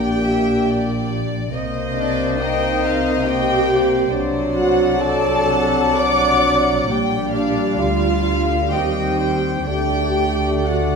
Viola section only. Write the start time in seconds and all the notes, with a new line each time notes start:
Already playing: G4
1.96 D4
2.40 D#4
3.26 G4
4.55 F#4
5.00 A4
5.97 D5
7.34 D4
7.78 F4
8.72 G4
9.68 G4
10.65 F#4